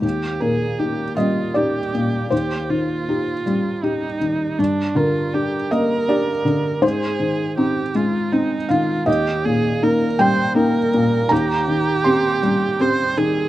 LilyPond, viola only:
\new Staff \with { instrumentName = "Viola" } { \time 3/4 \key ees \major \tempo 4 = 80 g'8 aes'8 g'8 f'8 g'4 | g'8 f'4. ees'4 | d'8 f'8 g'8 bes'4. | aes'4 g'8 f'8 ees'8 f'8 |
g'8 aes'8 bes'8 c''8 bes'4 | g'2 c''8 aes'8 | }